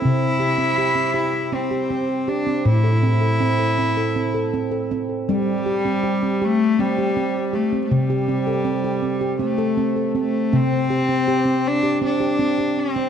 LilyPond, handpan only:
<<
  \new Staff \with { instrumentName = "Handpan" } { \time 7/8 \key c \major \tempo 4 = 80 c'8 g'16 c'16 g'16 c'16 g'8 c'16 g'16 c'8 g'16 c'16~ | c'16 a'16 c'16 a'16 c'16 a'16 c'16 a'16 c'16 a'16 c'16 a'16 c'8 | c'8 g'16 c'16 g'16 c'16 g'8 c'16 g'16 c'8 g'16 c'16~ | c'16 g'16 c'16 a'16 c'16 g'16 c'16 g'16 c'16 a'16 c'16 a'16 c'8 |
c'8 g'16 c'16 g'16 c'8 g'16 c'16 g'16 c'16 g'8 c'16 | }
  \new Staff \with { instrumentName = "Handpan" } { \clef bass \time 7/8 \key c \major c2.~ c8 | a,2.~ a,8 | g2.~ g8 | c2.~ c8 |
c2.~ c8 | }
>>